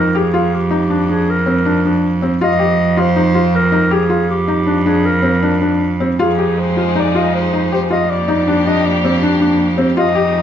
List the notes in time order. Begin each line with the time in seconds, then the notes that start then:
Already playing: F2 A#4
0.15 G4 G#4
0.34 F4
0.53 F2 G4
0.71 D#4
0.90 D4
1.09 D4 G#4
1.30 A#4
1.46 C4
1.66 D4
1.85 D4
2.22 C4
2.41 F2 F4 D#5
2.59 G4
2.97 F4 C5
3.16 D#4
3.35 F4
3.56 A#4
3.72 D#4
3.91 G4 G#4
4.09 F4
4.29 F2 G4
4.48 D#4
4.66 D4
4.86 D4 G#4
5.06 A#4
5.22 C4
5.42 D4
5.61 D4
6.00 C4
6.18 F2 F3 G#3 D#4 F4 G#4
6.38 G4
6.58 C5
6.77 F4
6.95 D#4 D5
7.15 F4 D#5
7.35 C5
7.53 D#4
7.72 G4 C5
7.90 F4 D#5
8.09 F2 A#3 D4 G4 D5
8.28 D#4
8.47 D4
8.66 D4 D#5
8.86 D5
9.04 C4
9.22 D4
9.40 D4
9.78 C4
9.97 F2 F3 G#3 D#4 F4 D#5
10.15 G4